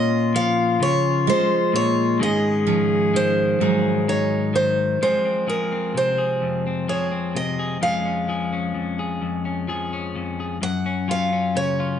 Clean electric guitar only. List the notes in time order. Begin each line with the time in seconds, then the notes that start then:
Already playing: A#2 F4
0.35 F3
0.80 C#3
1.73 A#2
2.19 G#2 D#3 G#3 C#4 G#4
2.68 C#4
3.14 D#3
3.60 G#2 D#3 D#4 G#4
4.08 D#4
4.54 D#3
5.02 F3 G#3 C4 G#4
5.25 C4
5.47 F3 G#4
5.72 C4
5.94 C3
6.18 G#4
6.42 F2
6.67 C4
6.88 F3 G#4
7.12 C4
7.35 C3
7.59 G#4
7.81 F2 F3 G#3 C#4 G#4
8.05 C#4
8.28 F3 G#4
8.53 C#4
8.75 F2
8.99 G#4
9.22 F2
9.45 C#4
9.68 F3 G#4
9.93 C#4
10.16 F2
10.40 G#4
10.62 F#2
10.86 C#4
11.08 F#3 F4
11.32 C#4
11.56 C#3
11.80 F4